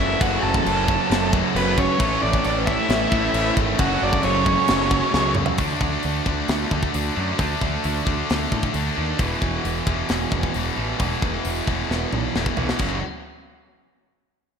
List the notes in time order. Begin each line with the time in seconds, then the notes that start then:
Already playing: F#2 C#3 F#3 A3 E4 A4 B4 E5
0.00 F#1 F#3 C#4 F#4 A4
0.18 F#1 F#2 C#3 F#3 C#4 F#4 A4 F#5, kick, crash
0.42 F#1 A4 A5
0.54 kick
0.64 F#1 F#3 C#4 F#4 A4, crash
0.87 F#3 C#4 F#4 A4, kick
1.09 F#1 F#3 C#4 F#4 A4, snare, crash
1.32 F#2 C#3 F#3, kick
1.54 F#1 F#2 C#3 F#3 B3 C#4 F#4 A4 B4, crash
1.76 F#3 C#4 F#4 A4 C#5, kick
1.98 A1 A2 E3 A3 C#4 E4 A4 B4 C#5, kick, crash
2.22 A1 D4 D5
2.33 kick
2.44 A1 A3 C#4 D4 E4 A4 D5, crash
2.66 A3 C#4 E4 A4 E5, kick
2.87 A1 A3 C#4 E4 A4, snare, crash
3.09 A1 A2 E3 A3, kick
3.33 A1 A2 E3 A3 C#4 E4 A4, crash
3.57 G#1 A3 C#4 E4 A4, kick
3.77 F#1 F#2 C#3 F#3 C#4 F#4 A4 F#5, kick, crash
4.02 F#1 D4 D5
4.13 kick
4.23 F#1 F#3 C#4 F#4 A4 C#5, crash
4.45 F#3 C#4 F#4 A4, kick
4.68 F#1 F#3 C#4 F#4 A4, snare, crash
4.90 C#3 F#3, kick
4.94 F#2
5.12 C#2 F#2 C#3 F#3 C#4 F#4 A4, snare
5.35 F#3 C#4 F#4 A4, mid tom
5.46 floor tom
5.57 D2 D3 A3 D4, kick, open hi-hat
5.81 D2, kick
6.03 D2, open hi-hat
6.24 D2 D3 A3 D4, kick
6.48 D2, snare, open hi-hat
6.71 D2, kick
6.83 kick
6.92 D2 D3 A3 D4, open hi-hat
7.15 F#2 D3 A3 D4
7.37 D2 D3 A3 D4, kick, open hi-hat
7.61 D2, kick
7.84 D2, open hi-hat
8.05 D2 D3 A3 D4, kick
8.30 D2, snare, open hi-hat
8.52 A2, kick
8.63 kick
8.74 D2 D3 A3 D4, open hi-hat
8.96 D#2 D3 A3 D4
9.18 E1 E2 B2 E3, kick, open hi-hat
9.42 E1, kick
9.65 E1, open hi-hat
9.86 E1 E2 B2 E3, kick
10.09 E1, snare, open hi-hat
10.32 E1, kick
10.43 kick
10.54 E1 E2 B2 E3, open hi-hat
10.76 A1 E2 B2 E3
10.98 E1 E2 B2 E3, kick, open hi-hat
11.22 E1, kick
11.45 E1, open hi-hat
11.67 E1 E2 B2 E3, kick
11.89 E1, snare
12.13 B1, mid tom
12.35 E1 E2 B2 E3, snare
12.46 kick
12.57 B1 E2 B2 E3, floor tom
12.69 snare
12.79 F#1 F#2 C#3 F#3, kick, crash